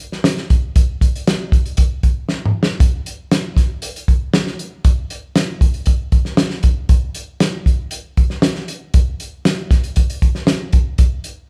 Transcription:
0.12 snare soft
0.24 snare loud
0.24 closed hi-hat medium
0.37 snare soft
0.50 kick medium
0.50 closed hi-hat medium
0.76 kick loud
0.76 closed hi-hat medium
1.01 kick medium
1.01 closed hi-hat medium
1.16 closed hi-hat medium
1.27 snare loud
1.27 closed hi-hat medium
1.52 kick medium
1.52 closed hi-hat medium
1.66 closed hi-hat soft
1.77 kick medium
1.77 closed hi-hat medium
2.03 kick medium
2.03 closed hi-hat medium
2.29 snare medium
2.46 mid tom medium
2.63 snare loud
2.80 kick loud
2.80 closed hi-hat medium
3.06 closed hi-hat medium
3.31 snare loud
3.31 closed hi-hat medium
3.57 kick medium
3.57 snare soft
3.57 closed hi-hat medium
3.82 closed hi-hat medium
3.96 closed hi-hat medium
4.08 kick medium
4.08 closed hi-hat medium
4.34 snare loud
4.34 closed hi-hat medium
4.47 snare soft
4.59 closed hi-hat medium
4.85 kick loud
4.85 closed hi-hat medium
5.10 closed hi-hat medium
5.36 snare loud
5.36 closed hi-hat medium
5.61 kick medium
5.61 closed hi-hat medium
5.74 closed hi-hat soft
5.86 kick medium
5.86 closed hi-hat medium
6.12 kick medium
6.12 closed hi-hat medium
6.25 snare soft
6.37 snare loud
6.37 closed hi-hat medium
6.50 snare soft
6.63 kick medium
6.63 closed hi-hat medium
6.89 kick loud
6.89 closed hi-hat medium
7.15 closed hi-hat medium
7.40 snare loud
7.40 closed hi-hat medium
7.66 kick medium
7.66 closed hi-hat medium
7.91 closed hi-hat medium
8.17 kick medium
8.17 closed hi-hat medium
8.30 snare soft
8.42 snare loud
8.42 closed hi-hat medium
8.55 snare soft
8.68 closed hi-hat medium
8.94 kick loud
8.94 closed hi-hat medium
9.20 closed hi-hat medium
9.45 snare loud
9.45 closed hi-hat medium
9.71 kick medium
9.71 snare soft
9.71 closed hi-hat medium
9.84 closed hi-hat soft
9.96 kick medium
9.96 closed hi-hat medium
10.10 closed hi-hat medium
10.22 kick medium
10.22 closed hi-hat medium
10.35 snare soft
10.47 snare loud
10.47 closed hi-hat medium
10.73 kick loud
10.73 closed hi-hat medium
10.98 kick loud
10.98 closed hi-hat medium
11.24 closed hi-hat medium

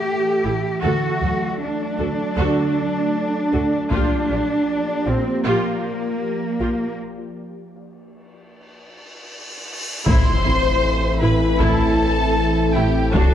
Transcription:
0.00 0.83 E3 medium
0.00 3.91 A3 medium
0.00 0.84 G4 medium
0.00 3.91 A4 medium
0.00 0.83 E5 medium
0.44 0.53 A1 medium
0.44 0.52 E4 medium
0.44 0.68 E4 medium
0.44 0.52 A4 medium
0.83 0.91 D2 medium
0.83 1.07 D3 medium
0.83 3.91 F#3 medium
0.83 1.19 F#4 medium
0.83 1.59 F#4 medium
0.83 1.19 A4 medium
0.83 6.99 D5 medium
1.21 1.30 D2 soft
1.21 1.46 F#3 medium
1.21 1.29 F#4 soft
1.21 1.29 A4 soft
1.60 3.87 D4 medium
1.99 2.07 D2 medium
1.99 2.23 A3 medium
1.99 2.07 F#4 soft
1.99 2.07 A4 medium
2.37 2.45 D2 medium
2.37 2.61 D3 medium
2.37 2.73 F#4 medium
2.37 2.73 A4 medium
3.52 3.61 D2 medium
3.52 3.76 A3 medium
3.52 3.60 F#4 medium
3.52 3.60 A4 medium
3.91 3.99 A#1 medium
3.91 6.99 F3 medium
3.91 4.14 A#3 medium
3.91 6.99 A#3 medium
3.91 5.04 D4 medium
3.91 4.27 F4 medium
3.91 4.27 G4 medium
3.91 6.99 G4 medium
3.91 taiko medium
4.29 4.37 A#1 soft
4.29 4.53 D4 soft
4.29 4.38 F4 soft
4.29 4.38 G4 soft
5.06 5.14 A#1 soft
5.06 5.45 C4 medium
5.06 5.29 F4 medium
5.06 5.15 F4 soft
5.06 5.15 G4 soft
5.45 5.53 A#1 medium
5.45 5.68 A#3 medium
5.45 6.96 A#3 medium
5.45 5.81 F4 medium
5.45 5.81 G4 medium
6.60 6.69 A#1 soft
6.60 6.84 F4 medium
6.60 6.69 F4 soft
6.60 6.69 G4 soft
6.99 cymbal swell medium
10.06 10.15 A1 medium
10.06 13.15 A1 medium
10.06 13.10 A2 medium
10.06 10.15 A2 medium
10.06 13.10 E3 medium
10.06 13.11 E3 medium
10.06 13.34 A3 medium
10.06 10.30 A3 medium
10.06 13.10 C4 medium
10.06 10.42 E4 medium
10.06 13.10 E4 medium
10.06 11.18 C5 medium
10.06 13.10 E5 medium
10.06 11.18 C6 loud
10.06 taiko loud
10.06 impact medium
10.44 10.53 A1 medium
10.44 10.54 A2 medium
10.44 10.69 C4 medium
10.44 10.53 E4 medium
11.22 11.30 A1 medium
11.22 11.30 A2 medium
11.22 11.30 E4 medium
11.22 11.45 E4 medium
11.22 11.61 B4 medium
11.22 11.59 B5 medium
11.60 11.68 A1 medium
11.60 11.69 A2 medium
11.60 11.83 A3 medium
11.60 11.96 E4 medium
11.60 12.76 A4 medium
11.60 12.75 A5 loud
11.60 taiko medium
12.75 12.83 A1 medium
12.75 12.84 A2 medium
12.75 12.84 E4 medium
12.75 12.99 E4 medium
12.75 13.14 G4 medium
12.75 13.14 G5 medium
13.13 13.34 D1 medium
13.13 13.22 D2 medium
13.13 13.34 D3 medium
13.13 13.23 D3 medium
13.13 13.34 F#3 medium
13.13 13.34 D4 medium
13.13 13.34 F#4 medium
13.13 13.34 A4 medium
13.13 13.34 D5 medium
13.13 13.34 A5 medium
13.13 taiko loud

